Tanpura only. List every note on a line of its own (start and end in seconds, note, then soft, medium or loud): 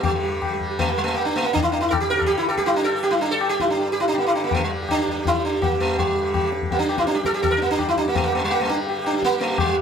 0.00 1.60 G2 medium
0.00 2.11 D3 medium
0.00 0.54 G3 medium
0.54 1.07 G3 medium
1.07 2.60 G3 medium
1.60 3.62 G2 medium
2.11 4.12 D3 medium
2.60 3.11 G3 medium
3.11 4.65 G3 medium
3.63 5.64 G2 medium
4.13 6.14 D3 medium
4.65 5.15 G3 medium
5.15 6.65 G3 medium
5.64 7.62 G2 medium
6.15 8.13 D3 medium
6.65 7.15 G3 medium
7.15 8.63 G3 medium
7.62 9.62 G2 medium
8.13 9.82 D3 medium
8.63 9.12 G3 medium
9.12 9.82 G3 medium
9.62 9.82 G2 medium